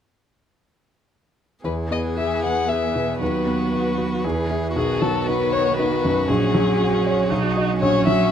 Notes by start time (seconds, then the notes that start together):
1.64 E2 E3 B3 G#4 B4
1.91 B3 D#5
2.17 G#4 E5
2.43 B4 F#5
2.69 G#4 E5
2.95 B2
3.21 D#2 F#3 F#4 B4
3.47 B3
3.73 F#4
3.98 B4
4.24 E2 E3 G#4
4.50 E4 B4
4.75 B1 D#3 B3 F#4 G#4
5.02 F#3 A4
5.27 D#4 B4
5.52 B4 C#5
5.77 D#4 B4
6.05 F#2
6.28 A#1 F#3 C#4 G#4
6.54 F#3
6.81 F#4
7.06 C#5
7.30 B1 D#4
7.57 F#4 D#5
7.81 A#1 C#4 F#4 C#5
8.06 F#3 E5